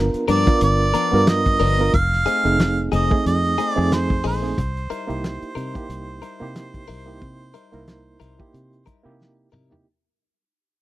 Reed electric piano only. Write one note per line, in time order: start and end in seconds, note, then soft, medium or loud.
0.00 0.24 B3 medium
0.00 0.25 D4 medium
0.00 0.25 F4 medium
0.00 0.25 A#4 medium
0.46 0.90 B3 medium
0.46 0.91 D4 medium
0.46 0.91 F4 medium
0.46 0.91 A#4 medium
1.12 1.56 B3 medium
1.12 1.57 D4 medium
1.12 1.57 F4 medium
1.12 1.57 A#4 medium
1.79 1.94 B3 medium
1.79 1.94 D4 medium
1.79 1.94 F4 medium
1.79 1.95 A#4 medium
2.44 2.88 A3 medium
2.44 2.89 C4 medium
2.44 2.89 D#4 medium
2.44 2.89 G#4 medium
3.11 3.55 A3 medium
3.11 3.55 C4 medium
3.11 3.55 D#4 medium
3.11 3.55 G#4 medium
3.76 4.20 A3 medium
3.76 4.20 C4 medium
3.76 4.21 D#4 medium
3.76 4.21 G#4 loud
4.41 4.57 A3 medium
4.41 4.57 C4 medium
4.41 4.58 D#4 medium
4.41 4.58 G#4 medium
5.07 5.52 A#3 medium
5.07 5.52 D#4 medium
5.07 5.53 E4 medium
5.07 5.53 G4 medium
5.75 6.19 A#3 medium
5.75 6.19 D#4 medium
5.75 6.19 E4 medium
5.75 6.19 G4 medium
6.40 6.84 A#3 loud
6.40 6.85 D#4 medium
6.40 6.85 E4 medium
6.40 6.86 G4 loud
7.06 7.50 A#3 medium
7.06 7.51 D#4 medium
7.06 7.51 E4 medium
7.06 7.51 G4 medium
7.72 8.17 A#3 medium
7.72 8.17 D#4 medium
7.72 8.17 E4 medium
7.72 8.17 A#4 loud
8.39 8.83 A#3 medium
8.39 8.83 D#4 medium
8.39 8.83 E4 medium
8.39 8.84 G4 medium
9.04 9.48 A#3 loud
9.04 9.48 D#4 medium
9.04 9.49 E4 medium
9.04 9.49 G4 loud
9.70 9.85 A#3 medium
9.70 9.86 D#4 medium
9.70 9.86 E4 medium
9.70 9.86 G4 medium